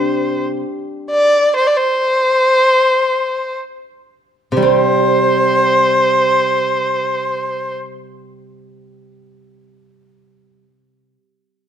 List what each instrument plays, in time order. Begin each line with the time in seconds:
Already playing: guzheng C3 C4 D4 G4, erhu C5
1.11 erhu D5
1.56 erhu C5
1.67 erhu D5
1.77 erhu C5
4.52 guzheng C3
4.57 guzheng G3
4.62 guzheng C4, erhu C5